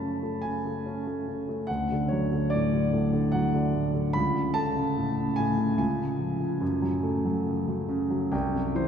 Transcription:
grand piano
Already playing: F#2 A3 C#4 A5 B5
0.02 C#3
0.23 A3
0.42 C#3 G#5
0.65 A3
0.86 C#4
1.07 A3
1.28 C#3
1.49 A3
1.67 D2 F#5
1.91 D3
2.08 F#3 C#5
2.32 D3
2.50 D5
2.55 A2
2.73 D3
2.93 A2
3.13 D3
3.32 F#3 F#5
3.54 D3
3.74 A2
3.94 D3
4.13 C#2 B5
4.35 C#3
4.54 A3 A5
4.76 C#3
4.97 A2
5.18 C#3
5.36 A2 G#5
5.58 C#3
5.78 C#2 G#5
5.99 C#3
6.19 F3
6.40 C#3
6.61 F#2
6.82 F#3
7.03 A3
7.25 F#3
7.46 C#3
7.68 F#3
7.89 C#3
8.10 F#3
8.32 C2 G5
8.53 C3
8.75 E3 C5

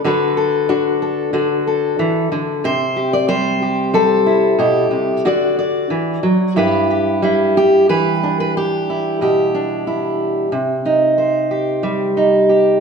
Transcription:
steel-string acoustic guitar
0.04 D3 F#4 A4 B4
0.37 A4
0.69 D4 F#4
1.02 A4
1.33 D3 F#4
1.67 A4
1.99 E3
2.32 D3
2.64 C3 C5
2.96 G4
3.13 D5
3.28 G3 C5
3.62 G4
3.94 G3 A4
4.26 E4
4.59 B2 G4
4.91 C3
5.25 D3 F#4 D5
5.59 D5
5.90 E3
6.23 F#3
6.56 G2 E4 G4 B4
6.90 G4
7.22 G3 E4
7.57 G4
7.89 E3 B4
8.23 D4
8.40 B4
8.57 G4
8.90 E4
9.21 B2 G4
9.55 D4
9.87 E4
10.52 C3
10.85 D#4
11.18 C5
11.51 G4
11.83 G3
12.17 D#4
12.49 G4

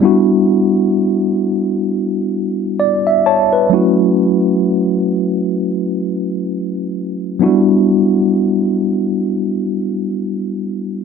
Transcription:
tine electric piano
0.00 G3 B3 D4 E4
0.05 F#4
2.80 D5
3.07 E5
3.26 C#5 A5
3.53 B4
3.70 F#3 A3 C#4 E4
3.74 F#4
7.39 F#3 B3 D4 E4
7.44 G3 F#4

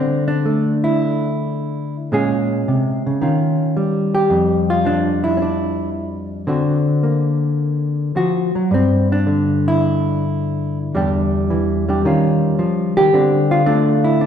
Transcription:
hollow-body jazz guitar
Already playing: D3 C4
0.28 D4
0.46 A3
0.84 E4
2.12 A#2 G#3 C#4 G#4
2.68 C3
3.07 C#3
3.22 D#3 C#4 F4
3.77 G3
4.15 G4
4.30 F2
4.70 F4
4.85 F3 D4
5.24 E4
5.37 C#4
5.42 D4
6.47 D3 C4 F#4
7.03 A#3
8.16 F3 F#4
8.55 F#3
8.71 G2 C4
9.12 D4
9.27 D3
9.68 E4
10.95 E2 G3 D4 G4
11.50 E3
11.89 G3 D4 G4
12.05 D#3 C#4 F4
12.59 F3
12.97 D#3 G4
13.14 D3 C4
13.51 F4
13.66 A3 D4
14.04 E4
14.21 D4

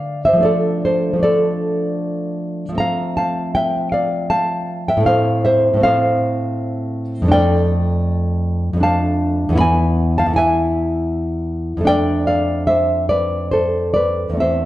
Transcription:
nylon-string guitar
Already playing: D3 A3 D4 D5 F5
0.25 C5 E5
0.33 F3 A3
0.40 D4 D5
0.45 A4
0.85 A4 C5
1.13 F3 A3
1.19 D4 D5
1.24 A4
2.69 F3 A3
2.75 C4 A#5
2.80 F5
3.17 F5 A5
3.55 E5 G5
3.92 D5 F5
4.30 F5 A5
4.88 E5 G5
4.97 A2 A3
5.03 C4 F5
5.07 C5
5.45 C5 E5
5.74 A2 A3
5.80 C4 F5
5.85 C5
7.22 F2 A3
7.28 D4 G5
7.33 D5
8.73 F2 A3
8.80 D4 F5 A5
9.49 E2 B3
9.55 E4 B5
9.61 G#5
10.18 F5 A5
10.26 E2 B3
10.33 E4 G#5
10.38 E5
11.77 F2 A3
11.85 D4 D5 G5
12.27 D5 F5
12.67 C5 E5
13.09 B4 D5
13.51 A4 C5
13.94 B4 D5
14.30 E2 A3
14.37 C4 E5
14.42 C5

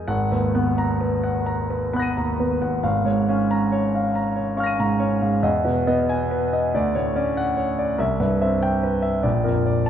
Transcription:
grand piano
Already playing: G#3 G#4 A#4 D#5 G#5 G6 A#6 D#7
0.08 G#1 F#5
0.32 D#2 B4
0.55 B3 F#5
0.78 A#5
1.01 B4
1.23 F#5
1.46 A#5
1.70 B4
1.93 B3 F#5 B5 F#6
1.99 A#6 D#7
2.17 D#2 A#5
2.40 B3 B4
2.62 D#2 F#5
2.83 G#1 F5
3.05 G#2 C#5
3.29 C#4 F5
3.51 A#5
3.72 C#5
3.95 F5
4.15 A#5
4.36 C#5
4.57 C#4 F5 C#6 F6
4.64 A#6 D#7
4.79 G#2 A#5
5.00 C#4 C#5
5.22 G#2 F5
5.43 E2 D#5
5.65 B2 B4
5.87 B3 D#5
6.09 G#5
6.31 B4
6.53 D#5
6.74 D2 D5
6.95 A2 C#5
7.16 C#4 D5
7.37 F#5
7.57 C#5
7.79 D5
7.98 C2 E5
8.20 G2 B4
8.42 C4 E5
8.63 G5
8.83 B4
9.02 E5
9.23 A#1 D5
9.44 F2 A#4
9.66 D5
9.86 A5

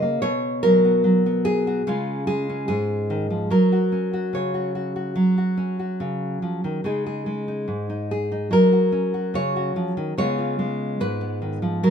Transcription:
nylon-string guitar
Already playing: C#3 F#4 A#4 D#5
0.02 A#3
0.22 B2 C#5
0.63 F#3 A#4
0.85 B3
1.04 F#3
1.26 B3
1.45 G#4
1.67 F#4
1.87 C#3 G#3 C#4 F4
2.27 G#3 G#4
2.49 C#4
2.68 G#2 G#4
3.10 D#3
3.30 F3
3.50 F#3 A#4
3.72 F#4
3.92 C#4
4.13 F#4
4.33 C#3 C#5
4.54 F#4
4.75 F#4
4.96 F#4
5.16 F#3
5.38 F#4
5.57 C#4
5.79 F#4
6.00 C#3
6.42 F3
6.64 D#3
6.84 C#3 G#3 D#4 G#4
7.06 G#4
7.26 G#3
7.48 D#4
7.68 G#2
7.90 D#4
8.11 G#4
8.32 D#4
8.51 F#3 A#4
8.73 F#4
8.92 C#4
9.14 F#4
9.34 C#3 C#5
9.56 F#4
9.76 F3
9.97 D#3
10.18 C#3 G#3 B3 F4 C#5
10.38 F4
10.59 G#3
11.00 G#2 B4
11.21 B3
11.42 D#3
11.62 F3
11.83 F#3 A#4

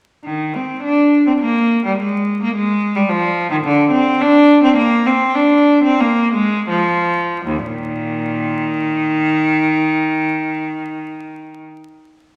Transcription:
cello
0.24 D#3
0.55 C4
0.83 D4
1.27 C4
1.40 A#3
1.85 G3
1.98 G#3
2.42 A#3
2.55 G#3
2.96 G3
3.09 F3
3.50 D#3
3.64 D3
3.91 C4
4.21 D4
4.63 C4
4.76 A#3
5.06 C4
5.35 D4
5.84 C4
6.00 A#3
6.34 G#3
6.69 F3
7.46 D#2
7.66 A#2 D#3

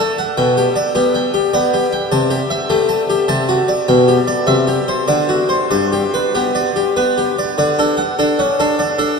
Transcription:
harpsichord
Already playing: A3
0.00 A4
0.18 F#5
0.37 B2 G5
0.57 G4
0.76 D5
0.95 B3 G4
1.15 G5
1.34 G4
1.53 B3 D5
1.74 G4
1.93 G5
2.12 C3 A5
2.30 G4
2.50 E5
2.70 A3 G4
2.89 A5
3.10 G4
3.28 C3 A5
3.49 F#4
3.68 D5
3.88 B2 G5
4.08 G4
4.28 D5
4.47 C3 E5
4.67 G4
4.88 C5
5.08 D3 D5
5.29 F#4
5.49 C5
5.71 G2 D5
5.92 G4
6.14 B4
6.35 B3 G4
6.55 D5
6.76 G4
6.96 B3 B4
7.18 G4
7.39 D5
7.58 D3 D5
7.79 D4 A4
7.97 F#5
8.19 D4 A4
8.39 C#4 F#5
8.60 D4 A4
8.79 D5
8.98 D4 A4

